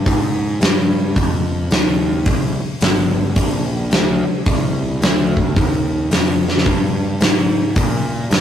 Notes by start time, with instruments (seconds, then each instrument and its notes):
0.06 picked electric bass G#2, kick, open hi-hat
0.61 picked electric bass G2, snare, open hi-hat
1.16 picked electric bass F2, kick, open hi-hat
1.71 picked electric bass D#2, snare, open hi-hat
2.26 picked electric bass C2, kick, open hi-hat
2.62 muted picked electric bass stroke
2.81 picked electric bass G1, snare, open hi-hat
3.36 picked electric bass A#1, kick, open hi-hat
3.91 picked electric bass D2, snare, open hi-hat
4.27 muted picked electric bass stroke
4.46 picked electric bass C2, kick, open hi-hat
5.01 picked electric bass D2, snare, open hi-hat
5.37 kick
5.56 picked electric bass D#2, kick, open hi-hat
6.11 picked electric bass F2, snare, open hi-hat
6.48 snare
6.58 snare
6.66 picked electric bass G2, kick, open hi-hat
7.21 picked electric bass G#2, snare, open hi-hat
7.76 picked electric bass A#2, kick, open hi-hat
8.30 picked electric bass G2, snare, open hi-hat